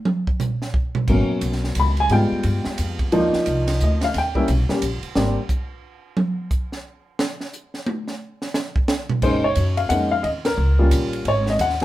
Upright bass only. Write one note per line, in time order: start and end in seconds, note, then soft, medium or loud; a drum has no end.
1.08 1.28 G#1 medium
1.29 muted upright bass stroke soft
1.41 1.75 B1 medium
1.76 2.09 C#2 medium
2.10 2.30 G#2 medium
2.32 muted upright bass stroke soft
2.44 2.64 G2 medium
2.66 muted upright bass stroke soft
2.79 3.11 F2 medium
3.13 3.32 D#2 medium
3.35 muted upright bass stroke soft
3.47 3.79 C2 medium
3.81 4.14 D2 medium
4.15 4.48 D#2 medium
4.48 4.68 B1 medium
4.82 5.02 A#1 medium
5.03 muted upright bass stroke soft
5.16 5.36 G#1 medium
9.22 9.55 F#1 medium
9.56 9.89 F#2 medium
9.90 10.23 F2 medium
10.24 10.57 D#2 medium
10.58 10.90 C#2 medium
10.91 11.24 A#1 medium
11.25 11.58 G#1 medium
11.59 11.85 D#2 medium